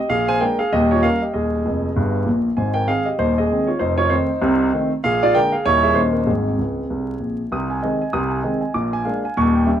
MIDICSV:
0, 0, Header, 1, 2, 480
1, 0, Start_track
1, 0, Key_signature, -4, "major"
1, 0, Tempo, 308801
1, 159, Time_signature, 4, 2, 24, 8
1, 15233, End_track
2, 0, Start_track
2, 0, Title_t, "Grand piano"
2, 0, Program_c, 0, 0
2, 147, Note_on_c, 0, 34, 61
2, 147, Note_on_c, 0, 77, 86
2, 151, Note_on_c, 0, 46, 66
2, 173, Note_on_c, 0, 68, 68
2, 413, Control_c, 0, 64, 127
2, 433, Note_off_c, 0, 68, 0
2, 440, Note_off_c, 0, 77, 0
2, 441, Note_on_c, 0, 80, 96
2, 446, Note_on_c, 0, 72, 69
2, 560, Note_off_c, 0, 34, 0
2, 563, Note_off_c, 0, 46, 0
2, 626, Note_off_c, 0, 72, 0
2, 627, Note_on_c, 0, 79, 81
2, 632, Note_on_c, 0, 58, 44
2, 634, Note_on_c, 0, 56, 38
2, 637, Note_off_c, 0, 80, 0
2, 641, Note_on_c, 0, 62, 45
2, 642, Note_on_c, 0, 70, 66
2, 659, Control_c, 0, 64, 0
2, 899, Note_off_c, 0, 58, 0
2, 900, Note_off_c, 0, 56, 0
2, 905, Note_off_c, 0, 62, 0
2, 908, Note_off_c, 0, 70, 0
2, 914, Note_on_c, 0, 77, 77
2, 920, Note_off_c, 0, 79, 0
2, 932, Note_on_c, 0, 68, 63
2, 1110, Note_off_c, 0, 68, 0
2, 1114, Note_off_c, 0, 77, 0
2, 1127, Note_on_c, 0, 75, 93
2, 1130, Note_on_c, 0, 27, 71
2, 1141, Note_on_c, 0, 39, 80
2, 1144, Note_on_c, 0, 67, 74
2, 1367, Control_c, 0, 64, 127
2, 1400, Note_off_c, 0, 67, 0
2, 1410, Note_off_c, 0, 75, 0
2, 1417, Note_on_c, 0, 73, 73
2, 1448, Note_on_c, 0, 65, 57
2, 1534, Note_off_c, 0, 27, 0
2, 1540, Note_off_c, 0, 39, 0
2, 1591, Note_on_c, 0, 55, 37
2, 1596, Note_on_c, 0, 77, 86
2, 1605, Note_off_c, 0, 73, 0
2, 1606, Note_on_c, 0, 58, 38
2, 1609, Note_off_c, 0, 65, 0
2, 1610, Note_on_c, 0, 61, 38
2, 1615, Note_on_c, 0, 70, 64
2, 1624, Control_c, 0, 64, 0
2, 1858, Note_off_c, 0, 55, 0
2, 1868, Note_off_c, 0, 58, 0
2, 1872, Note_off_c, 0, 61, 0
2, 1875, Note_off_c, 0, 70, 0
2, 1885, Note_off_c, 0, 77, 0
2, 1896, Note_on_c, 0, 75, 52
2, 1915, Note_on_c, 0, 67, 45
2, 2053, Note_off_c, 0, 75, 0
2, 2077, Note_on_c, 0, 75, 62
2, 2081, Note_on_c, 0, 39, 64
2, 2082, Note_off_c, 0, 67, 0
2, 2086, Note_on_c, 0, 27, 49
2, 2098, Note_on_c, 0, 68, 53
2, 2340, Control_c, 0, 64, 127
2, 2489, Note_off_c, 0, 39, 0
2, 2492, Note_off_c, 0, 27, 0
2, 2564, Note_on_c, 0, 29, 56
2, 2568, Note_on_c, 0, 41, 56
2, 2577, Control_c, 0, 64, 0
2, 2923, Note_off_c, 0, 29, 0
2, 2926, Note_off_c, 0, 41, 0
2, 3049, Note_on_c, 0, 43, 62
2, 3053, Note_on_c, 0, 31, 62
2, 3302, Control_c, 0, 64, 127
2, 3406, Note_off_c, 0, 43, 0
2, 3409, Note_off_c, 0, 31, 0
2, 3468, Note_off_c, 0, 68, 0
2, 3502, Note_on_c, 0, 34, 52
2, 3504, Note_on_c, 0, 46, 53
2, 3519, Note_off_c, 0, 75, 0
2, 3536, Control_c, 0, 64, 0
2, 3869, Note_off_c, 0, 34, 0
2, 3870, Note_off_c, 0, 46, 0
2, 3991, Note_on_c, 0, 80, 65
2, 3999, Note_on_c, 0, 32, 51
2, 4005, Note_on_c, 0, 44, 51
2, 4008, Note_on_c, 0, 72, 51
2, 4255, Control_c, 0, 64, 127
2, 4257, Note_on_c, 0, 79, 80
2, 4271, Note_off_c, 0, 72, 0
2, 4277, Note_on_c, 0, 70, 56
2, 4283, Note_off_c, 0, 80, 0
2, 4408, Note_off_c, 0, 32, 0
2, 4412, Note_off_c, 0, 44, 0
2, 4462, Note_off_c, 0, 70, 0
2, 4466, Note_off_c, 0, 79, 0
2, 4474, Note_on_c, 0, 56, 31
2, 4474, Note_on_c, 0, 77, 84
2, 4478, Note_on_c, 0, 51, 34
2, 4483, Note_on_c, 0, 60, 39
2, 4487, Note_on_c, 0, 68, 59
2, 4500, Control_c, 0, 64, 0
2, 4740, Note_off_c, 0, 56, 0
2, 4743, Note_off_c, 0, 51, 0
2, 4747, Note_off_c, 0, 60, 0
2, 4749, Note_on_c, 0, 75, 61
2, 4751, Note_off_c, 0, 68, 0
2, 4762, Note_on_c, 0, 67, 48
2, 4764, Note_off_c, 0, 77, 0
2, 4945, Note_off_c, 0, 67, 0
2, 4951, Note_on_c, 0, 27, 65
2, 4952, Note_off_c, 0, 75, 0
2, 4956, Note_on_c, 0, 72, 79
2, 4962, Note_on_c, 0, 39, 64
2, 4969, Note_on_c, 0, 63, 62
2, 5232, Note_off_c, 0, 63, 0
2, 5245, Note_off_c, 0, 72, 0
2, 5254, Note_on_c, 0, 75, 74
2, 5279, Note_on_c, 0, 68, 55
2, 5363, Note_off_c, 0, 27, 0
2, 5370, Note_off_c, 0, 39, 0
2, 5464, Note_on_c, 0, 51, 45
2, 5465, Note_on_c, 0, 56, 38
2, 5474, Note_on_c, 0, 60, 48
2, 5707, Note_on_c, 0, 73, 61
2, 5711, Note_off_c, 0, 68, 0
2, 5721, Note_off_c, 0, 51, 0
2, 5723, Note_off_c, 0, 56, 0
2, 5724, Note_on_c, 0, 65, 51
2, 5729, Note_off_c, 0, 60, 0
2, 5731, Note_off_c, 0, 75, 0
2, 5896, Note_on_c, 0, 72, 73
2, 5906, Note_off_c, 0, 65, 0
2, 5908, Note_on_c, 0, 41, 66
2, 5911, Note_off_c, 0, 73, 0
2, 5913, Note_on_c, 0, 29, 58
2, 5928, Note_on_c, 0, 63, 62
2, 6179, Note_on_c, 0, 73, 86
2, 6180, Control_c, 0, 64, 127
2, 6183, Note_on_c, 0, 65, 62
2, 6191, Note_off_c, 0, 63, 0
2, 6195, Note_off_c, 0, 72, 0
2, 6322, Note_off_c, 0, 41, 0
2, 6325, Note_off_c, 0, 29, 0
2, 6363, Note_on_c, 0, 51, 42
2, 6365, Note_on_c, 0, 72, 76
2, 6374, Note_off_c, 0, 65, 0
2, 6384, Note_on_c, 0, 60, 47
2, 6386, Note_on_c, 0, 57, 41
2, 6387, Note_off_c, 0, 73, 0
2, 6389, Note_on_c, 0, 63, 55
2, 6417, Control_c, 0, 64, 0
2, 6637, Note_off_c, 0, 51, 0
2, 6653, Note_off_c, 0, 60, 0
2, 6654, Note_off_c, 0, 57, 0
2, 6864, Note_on_c, 0, 36, 81
2, 6864, Note_on_c, 0, 48, 82
2, 7279, Note_off_c, 0, 36, 0
2, 7280, Note_off_c, 0, 48, 0
2, 7358, Note_on_c, 0, 51, 55
2, 7360, Note_on_c, 0, 57, 43
2, 7367, Note_on_c, 0, 60, 52
2, 7580, Note_off_c, 0, 63, 0
2, 7623, Note_off_c, 0, 51, 0
2, 7624, Note_off_c, 0, 57, 0
2, 7630, Note_off_c, 0, 60, 0
2, 7630, Note_off_c, 0, 72, 0
2, 7831, Note_on_c, 0, 77, 92
2, 7838, Note_on_c, 0, 46, 73
2, 7840, Note_on_c, 0, 34, 59
2, 7859, Note_on_c, 0, 68, 65
2, 8097, Control_c, 0, 64, 127
2, 8117, Note_off_c, 0, 68, 0
2, 8123, Note_off_c, 0, 77, 0
2, 8128, Note_on_c, 0, 74, 94
2, 8140, Note_on_c, 0, 65, 69
2, 8247, Note_off_c, 0, 46, 0
2, 8248, Note_off_c, 0, 34, 0
2, 8310, Note_on_c, 0, 79, 100
2, 8313, Note_on_c, 0, 50, 48
2, 8314, Note_off_c, 0, 65, 0
2, 8314, Note_on_c, 0, 56, 41
2, 8321, Note_off_c, 0, 74, 0
2, 8322, Note_on_c, 0, 58, 44
2, 8325, Note_on_c, 0, 70, 75
2, 8340, Control_c, 0, 64, 0
2, 8579, Note_off_c, 0, 50, 0
2, 8580, Note_off_c, 0, 56, 0
2, 8584, Note_on_c, 0, 77, 71
2, 8586, Note_off_c, 0, 58, 0
2, 8590, Note_off_c, 0, 70, 0
2, 8602, Note_off_c, 0, 79, 0
2, 8613, Note_on_c, 0, 68, 51
2, 8785, Note_on_c, 0, 39, 74
2, 8790, Note_off_c, 0, 68, 0
2, 8790, Note_off_c, 0, 77, 0
2, 8790, Note_on_c, 0, 73, 100
2, 8791, Note_on_c, 0, 51, 47
2, 8792, Note_on_c, 0, 27, 74
2, 8792, Note_on_c, 0, 55, 42
2, 8800, Note_on_c, 0, 64, 69
2, 8806, Note_on_c, 0, 58, 39
2, 9048, Control_c, 0, 64, 127
2, 9058, Note_off_c, 0, 51, 0
2, 9058, Note_off_c, 0, 55, 0
2, 9065, Note_on_c, 0, 76, 76
2, 9067, Note_off_c, 0, 64, 0
2, 9069, Note_off_c, 0, 58, 0
2, 9077, Note_on_c, 0, 68, 59
2, 9082, Note_off_c, 0, 73, 0
2, 9200, Note_off_c, 0, 39, 0
2, 9204, Note_off_c, 0, 27, 0
2, 9237, Note_on_c, 0, 51, 38
2, 9246, Note_on_c, 0, 72, 73
2, 9247, Note_on_c, 0, 27, 60
2, 9248, Note_on_c, 0, 39, 60
2, 9248, Note_on_c, 0, 55, 35
2, 9260, Note_on_c, 0, 63, 53
2, 9262, Note_off_c, 0, 68, 0
2, 9262, Note_on_c, 0, 61, 35
2, 9270, Note_off_c, 0, 76, 0
2, 9305, Control_c, 0, 64, 0
2, 9513, Note_off_c, 0, 51, 0
2, 9521, Note_off_c, 0, 55, 0
2, 9526, Note_on_c, 0, 70, 49
2, 9531, Note_off_c, 0, 61, 0
2, 9532, Control_c, 0, 64, 127
2, 9536, Note_off_c, 0, 63, 0
2, 9550, Note_off_c, 0, 72, 0
2, 9557, Note_on_c, 0, 61, 31
2, 9669, Note_off_c, 0, 27, 0
2, 9670, Note_off_c, 0, 39, 0
2, 9737, Note_on_c, 0, 68, 49
2, 9740, Note_off_c, 0, 70, 0
2, 9742, Note_off_c, 0, 61, 0
2, 9743, Note_on_c, 0, 32, 49
2, 9749, Note_on_c, 0, 44, 50
2, 9771, Note_on_c, 0, 60, 36
2, 9783, Control_c, 0, 64, 0
2, 10022, Control_c, 0, 64, 127
2, 10159, Note_off_c, 0, 32, 0
2, 10162, Note_off_c, 0, 44, 0
2, 10236, Note_on_c, 0, 37, 42
2, 10257, Control_c, 0, 64, 0
2, 10598, Note_off_c, 0, 37, 0
2, 10729, Note_on_c, 0, 36, 51
2, 11086, Note_off_c, 0, 36, 0
2, 11181, Note_on_c, 0, 34, 41
2, 11430, Note_off_c, 0, 60, 0
2, 11475, Note_off_c, 0, 68, 0
2, 11548, Note_off_c, 0, 34, 0
2, 11686, Note_on_c, 0, 36, 65
2, 11688, Note_on_c, 0, 48, 63
2, 11694, Note_on_c, 0, 87, 60
2, 11938, Control_c, 0, 64, 127
2, 11972, Note_on_c, 0, 80, 62
2, 12089, Note_off_c, 0, 87, 0
2, 12091, Note_off_c, 0, 36, 0
2, 12093, Note_off_c, 0, 48, 0
2, 12164, Note_on_c, 0, 75, 55
2, 12174, Note_on_c, 0, 51, 48
2, 12177, Control_c, 0, 64, 0
2, 12189, Note_on_c, 0, 56, 42
2, 12190, Note_on_c, 0, 60, 48
2, 12335, Note_off_c, 0, 80, 0
2, 12434, Note_off_c, 0, 51, 0
2, 12445, Note_off_c, 0, 56, 0
2, 12446, Note_off_c, 0, 60, 0
2, 12460, Note_on_c, 0, 80, 55
2, 12564, Note_off_c, 0, 75, 0
2, 12639, Note_on_c, 0, 87, 71
2, 12640, Note_on_c, 0, 48, 73
2, 12643, Note_on_c, 0, 36, 70
2, 12818, Note_off_c, 0, 80, 0
2, 12906, Note_on_c, 0, 80, 57
2, 13042, Note_off_c, 0, 87, 0
2, 13048, Note_off_c, 0, 48, 0
2, 13049, Note_off_c, 0, 36, 0
2, 13107, Note_on_c, 0, 51, 44
2, 13107, Note_on_c, 0, 75, 55
2, 13127, Note_on_c, 0, 56, 42
2, 13131, Note_on_c, 0, 60, 50
2, 13281, Note_off_c, 0, 80, 0
2, 13374, Note_off_c, 0, 51, 0
2, 13386, Note_on_c, 0, 80, 48
2, 13388, Note_off_c, 0, 56, 0
2, 13392, Note_off_c, 0, 60, 0
2, 13515, Note_off_c, 0, 75, 0
2, 13589, Note_off_c, 0, 80, 0
2, 13590, Note_on_c, 0, 86, 60
2, 13591, Note_on_c, 0, 46, 67
2, 13592, Note_on_c, 0, 34, 62
2, 13845, Control_c, 0, 64, 127
2, 13883, Note_on_c, 0, 80, 67
2, 13997, Note_off_c, 0, 86, 0
2, 14002, Note_off_c, 0, 46, 0
2, 14003, Note_off_c, 0, 34, 0
2, 14065, Note_on_c, 0, 77, 53
2, 14072, Note_on_c, 0, 56, 42
2, 14082, Note_on_c, 0, 58, 41
2, 14092, Note_on_c, 0, 62, 51
2, 14103, Control_c, 0, 64, 0
2, 14249, Note_off_c, 0, 80, 0
2, 14338, Note_off_c, 0, 56, 0
2, 14345, Note_off_c, 0, 58, 0
2, 14353, Note_off_c, 0, 62, 0
2, 14376, Note_on_c, 0, 80, 62
2, 14474, Note_off_c, 0, 77, 0
2, 14563, Note_on_c, 0, 39, 87
2, 14564, Note_off_c, 0, 80, 0
2, 14568, Note_on_c, 0, 27, 79
2, 14569, Note_on_c, 0, 85, 75
2, 14816, Control_c, 0, 64, 127
2, 14845, Note_on_c, 0, 79, 58
2, 14966, Note_off_c, 0, 85, 0
2, 14969, Note_off_c, 0, 39, 0
2, 14972, Note_off_c, 0, 27, 0
2, 15019, Note_on_c, 0, 55, 50
2, 15021, Note_on_c, 0, 76, 57
2, 15023, Note_on_c, 0, 61, 45
2, 15056, Control_c, 0, 64, 0
2, 15210, Note_off_c, 0, 79, 0
2, 15233, Note_off_c, 0, 55, 0
2, 15233, Note_off_c, 0, 61, 0
2, 15233, Note_off_c, 0, 76, 0
2, 15233, End_track
0, 0, End_of_file